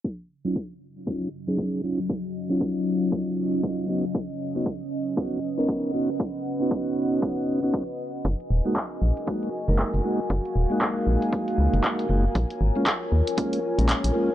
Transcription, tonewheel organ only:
X:1
M:4/4
L:1/16
Q:"Swing 16ths" 1/4=117
K:Ebm
V:1 name="Tonewheel organ"
z3 [G,DEF] z4 [G,DEF]2 z [G,DEA]3 [G,DEF] z | z3 [G,DEF]8- [G,DEF]3 [CDEG] z | z3 [CDEG] z4 [CDEG]2 z [CDEB]3 [CDEG] z | z3 [CDEG]8 [CDEG]2 z3 |
z3 [A,B,EG] z4 [A,B,EG]2 z [A,B,EB]3 [A,B,EG] z | z3 [A,B,EG]8- [A,B,EG]3 [A,B,EG] z | z3 [A,B,DF] z4 [A,B,DF]2 z [A,B,DB]3 [A,B,DF] z |]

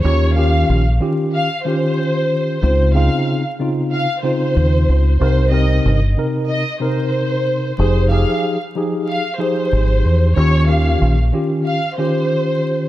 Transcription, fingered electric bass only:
X:1
M:4/4
L:1/16
Q:"Swing 16ths" 1/4=93
K:Ebmix
V:1 name="Fingered electric bass" clef=bass
E,,4 B,,,2 z8 z2 | D,,3 z8 z E,,2 D,,2 | C,,4 G,,,2 z8 z2 | F,,,3 z8 z A,,,2 =E,,2 |
E,,4 B,,,2 z8 z2 |]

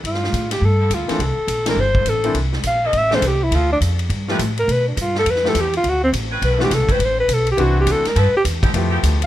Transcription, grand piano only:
X:1
M:4/4
L:1/8
Q:"Swing" 1/4=207
K:Gmix
V:1 name="Grand piano"
z6 z [E,_B,CDA] | z3 [E,_B,CDA] z3 [E,B,CDE] | z4 z [E,_B,CDA] z2 | z4 z [F,A,B,EG] z2 |
z4 z [F,A,B,EG] z2 | z4 z [E,B,CD^F] z2 | z4 [E,B,CD^F]3 z | z4 [F,A,B,EG]3 z |]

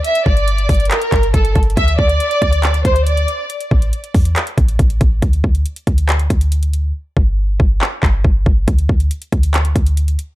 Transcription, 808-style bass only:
X:1
M:4/4
L:1/8
Q:1/4=139
K:Aphr
V:1 name="808-style bass" clef=bass
z G,,,2 G,,, z G,,, G,,, G,,, | D,, D,, z D,,2 D,,2 z | z A,,, z E,, z A,,, A,,, A,,, | D,, D,, z D,,2 D,,3 |
z G,,,2 G,,, z G,,, G,,, G,,, | D,, D,, z D,,2 D,,2 z |]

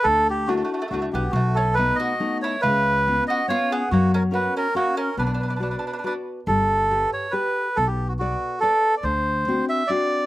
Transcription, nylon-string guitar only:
X:1
M:3/4
L:1/8
Q:"Swing" 1/4=140
K:Bm
V:1 name="Nylon-string guitar"
D,2 [DEF]2 [DEF]2 | B,,2 [A,B,^D]2 [A,B,D]2 | C,2 [B,C^E]2 [B,CE]2 | F,2 [CF^A]2 [CFA]2 |
B,2 [FBd]2 [FBd]2 | G,2 [GAB]2 [GAB]2 | B,2 [ABd]2 [ABd]2 | D,2 [=CDF]2 [CDF]2 |]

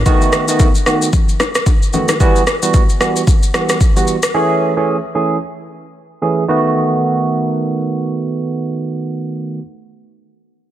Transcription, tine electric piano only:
X:1
M:4/4
L:1/16
Q:"Swing 16ths" 1/4=112
K:Bmix
V:1 name="Tine electric piano"
[D,A,B,F]3 [D,A,B,F] z2 [D,A,B,F]2 z6 [D,A,B,F]2 | [E,=G,B,F]2 z [E,G,B,F] z2 [E,G,B,F]2 z2 [E,G,B,F]2 z [E,G,B,F] z2 | [E,A,CG]3 [E,A,CG] z2 [E,A,CG]2 z6 [E,A,CG]2 | [D,A,B,F]16- |
[D,A,B,F]16 |]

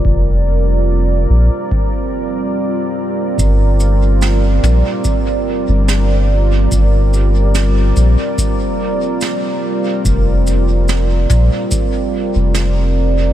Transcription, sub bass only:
X:1
M:4/4
L:1/16
Q:"Swing 16ths" 1/4=72
K:Gm
V:1 name="Sub bass" clef=bass
F,,,6 B,,, z8 z | G,,,6 B,,, z4 G,,,4- G,,, | G,,,6 B,,, z8 z | F,,,6 B,,, z4 F,,,4- F,,, |]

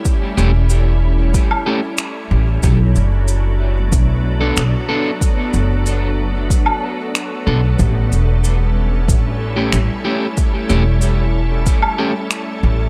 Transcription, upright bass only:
X:1
M:4/4
L:1/8
Q:1/4=93
K:Amix
V:1 name="Upright bass" clef=bass
z E,,,3 z3 A,,, | B,,, F,,,3 B,,,2 B,,, z | z F,,,3 z3 B,,, | A,,, E,,,3 A,,,2 A,,, z |
z E,,,3 z3 A,,, |]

